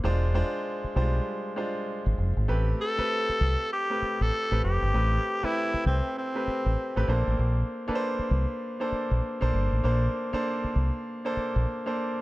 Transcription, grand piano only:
X:1
M:4/4
L:1/16
Q:"Swing 16ths" 1/4=98
K:Aphr
V:1 name="Grand piano"
[^G,DFc]2 [G,DFc]4 [=G,^G,DFc]4 [G,DFc]6 | [A,CG=B]3 [A,CGB]6 [A,CGB]4 [A,CGB]3 | [A,CG=B]3 [A,CGB]6 [A,CGB]4 [A,CGB] [_B,DAc]2- | [B,DAc]3 [B,DA=Bc]6 [_B,DAc]4 [B,DAc]3 |
[B,DAc]3 [B,DAc]6 [B,DAc]4 [B,DAc]3 |]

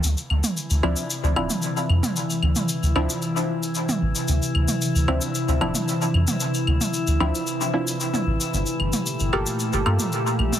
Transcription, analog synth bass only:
X:1
M:4/4
L:1/16
Q:1/4=113
K:Dm
V:1 name="Analog synth bass" clef=bass
D,, z D,, z2 D,, D,, z2 D,, D,,, z3 F,, z | z2 D,, z2 D,, D,, z6 z A,,, z | D,, z D,, z2 D,, D,, z2 D,, D,,, z3 F,, z | z2 D,, z2 D,, D,, z6 z A,,, z |
G,,, z G,,, z2 G,,, G,,, z2 G,,, G,, z3 B,,, z |]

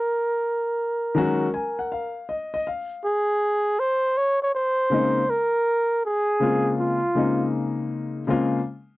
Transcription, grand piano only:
X:1
M:4/4
L:1/16
Q:"Swing 16ths" 1/4=80
K:Bbm
V:1 name="Grand piano"
z6 [E,G,A,DGb]2 a g f2 e e f2 | z8 z2 [D,A,B,CE]2 z4 | z2 [D,A,B,CF]2 z2 [D,A,B,CE]6 [D,A,B,CF]2 z2 |]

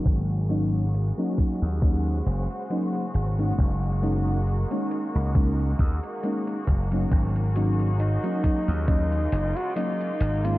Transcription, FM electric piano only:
X:1
M:4/4
L:1/16
Q:"Swing 16ths" 1/4=68
K:Abmix
V:1 name="FM electric piano"
[G,B,DE]2 [G,B,DE]2 z [G,B,DE]3 [G,B,DE]2 z2 [G,B,DE]2 z [A,B,DE]- | [A,B,DE]2 [A,B,DE]2 z [A,B,DE]3 [A,B,DE]2 z2 [A,B,DE]2 z [G,B,DE]- | [G,B,DE]2 [G,B,DE]2 z [G,B,DE]3 [G,B,DE]2 z2 [G,B,DE]2 z [A,B,DE] |]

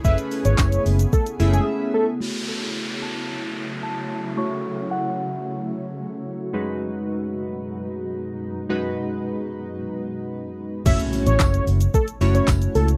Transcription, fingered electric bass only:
X:1
M:4/4
L:1/16
Q:1/4=111
K:F#dor
V:1 name="Fingered electric bass" clef=bass
F,,, z2 G,,, F,,,2 F,,,2 z2 F,,,2 z4 | z16 | z16 | z16 |
z16 | F,,, z2 A,,, F,,,2 F,,,2 z2 F,,,2 F,,,2 C,,2 |]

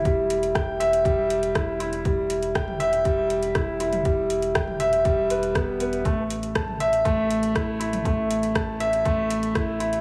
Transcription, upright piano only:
X:1
M:4/4
L:1/8
Q:1/4=120
K:Em
V:1 name="Upright piano"
G, z g e G, z E E | G, z g e G, z E E | G, z g e G, B B, B, | A, z a e A, z E E |
A, z a e A, z E E |]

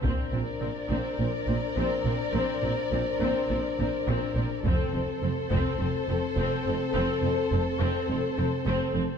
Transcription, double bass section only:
X:1
M:4/4
L:1/8
Q:1/4=104
K:Bb
V:1 name="Double bass section" clef=bass
B,,, B,,, B,,, B,,, B,,, B,,, B,,, B,,, | B,,, B,,, B,,, B,,, B,,, B,,, B,,, B,,, | F,,, F,,, F,,, F,,, F,,, F,,, F,,, F,,, | F,,, F,,, F,,, F,,, F,,, F,,, F,,, F,,, |]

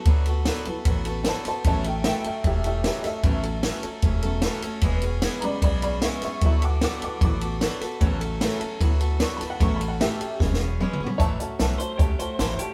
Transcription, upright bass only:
X:1
M:4/4
L:1/8
Q:1/4=151
K:A
V:1 name="Upright bass" clef=bass
D,,3 z A,,,3 z | A,,,3 z E,,,3 z | A,,,3 z E,,,3 z | E,,,3 z B,,,3 z |
D,,3 z A,,,3 z | A,,,3 z D,,3 z | A,,,3 z E,,,3 z | A,,, z B,,, z C,, z A,,, z |]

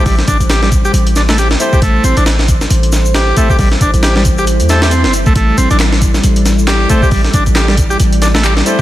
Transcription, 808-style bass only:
X:1
M:4/4
L:1/16
Q:"Swing 16ths" 1/4=136
K:Am
V:1 name="808-style bass" clef=bass
A,,, z A,,, A,,,4- A,,, A,,,6 z2 | A,,, z A,,, A,,,4- A,,, A,,,6 z2 | A,,, z A,,, A,,,6 E,,4 G,,,3 | A,,, z A,,, A,,,4- A,,, A,,,6 z2 |
A,,, z A,,, A,,,4- A,,, A,,,6 z2 |]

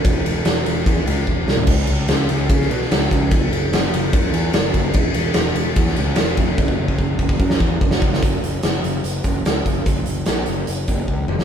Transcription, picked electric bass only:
X:1
M:4/4
L:1/8
Q:1/4=147
K:Elyd
V:1 name="Picked electric bass" clef=bass
E,,, E,,, E,,, E,,, E,, C,, E,,, ^B,,, | C,, C,, C,, C,, C, B,, C,, C,, | F,,, F,,, F,,, F,,, F,, E,, F,,, F,,, | E,,, E,,, E,,, E,,, E,, C,, E,,, ^E,,, |
F,,, F,,, F,,, F,,, F,, E,, F,,, F,,, | F,,, F,,, F,,, F,,, F,,, F,,, C,, F,,, | F,,, F,,, A,,, F,,, F,,, F,,, C,, F,,, |]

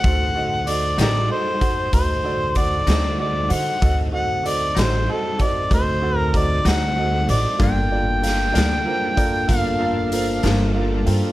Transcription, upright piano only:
X:1
M:12/8
L:1/8
Q:3/8=64
K:Dphr
V:1 name="Upright piano"
[^FAc^f] [FAce] [FAce] [FAce] [FAce] [FAcf] [FAce] [FAcd] [FAcf] [FAce] [FAce] [FAce] | [^FAce] [FAce] [FAce] [FAce] [FAce] [FAce] [FAce] [FAc^f] [FAce] [FAce] [FAce] [FAce] | [FABd] [FABd] [FABf] [FABd] [FABc] [FABd] [FABf] [FABf] [FABc] [FABc] [FABf] [FABcg] |]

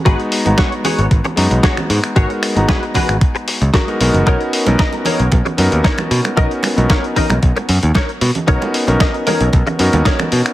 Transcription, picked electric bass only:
X:1
M:4/4
L:1/16
Q:1/4=114
K:B
V:1 name="Picked electric bass" clef=bass
G,,, z2 G,,, z3 G,,, G,,, z F,, B,,, z2 G,, z | G,,, z2 G,,, z3 G,,, z3 C,, z2 B,,, F,,, | B,,, z2 B,,, z3 B,,, B,,, z F,, D,, z2 B,, z | B,,, z2 B,,, z3 B,,, B,,, z F,, D,, z2 B,, z |
B,,, z2 B,,, z3 B,,, B,,, z F,, D,, z2 B,, z |]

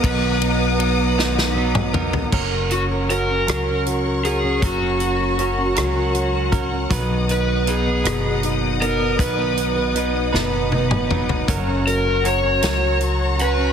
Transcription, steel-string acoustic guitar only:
X:1
M:6/8
L:1/16
Q:3/8=52
K:B
V:1 name="Steel-string acoustic guitar"
B,,2 D4 D2 B,2 D2 | [F,A] C F A F C [F,A] C F A F C | [F,A] C F A F C [F,A] C F A F C | [B,,B] B, D B D B, [B,,B] B, D2 D B, |
[B,,B] B, D B D B, [B,,B] B, D B D B, | [F,A] C F A F C [F,A] C F2 F C |]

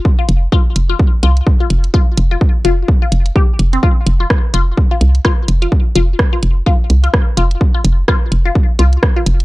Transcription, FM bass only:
X:1
M:4/4
L:1/8
Q:"Swing 16ths" 1/4=127
K:Cm
V:1 name="FM bass" clef=bass
z F,,, z F,,, z C,, z F,,, | z F,,, z F,,, z F,,, z F,,, | z F,,, z F,,, z C,, z F,,, | z F,,, z F,,, z C,, z F,,, |
z F,,, z F,,, z C,, z F,,, |]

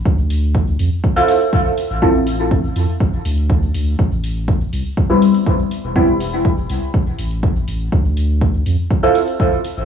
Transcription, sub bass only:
X:1
M:4/4
L:1/16
Q:1/4=122
K:Ddor
V:1 name="Sub bass" clef=bass
D,,6 F,, z8 A,,,- | A,,,6 F,, z A,,, z D,,4 D,,2 | A,,,6 C,, z8 E,,,- | E,,,6 C,, z E,,, z A,,,4 A,,,2 |
D,,6 F,, z8 A,,, |]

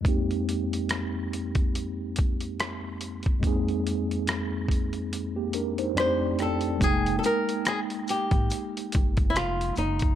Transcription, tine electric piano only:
X:1
M:4/4
L:1/16
Q:"Swing 16ths" 1/4=71
K:Fdor
V:1 name="Tine electric piano"
z16 | z8 z [B,G] [DB] [Ec] d2 g2 | z16 |]
V:2 name="Tine electric piano"
[F,,A,B,CEG]16 | [F,,A,B,CEA]8- [F,,A,B,CEA]2 z2 [F,,G,=A,CDEG]4 | [G,A,B,Eg]16 |]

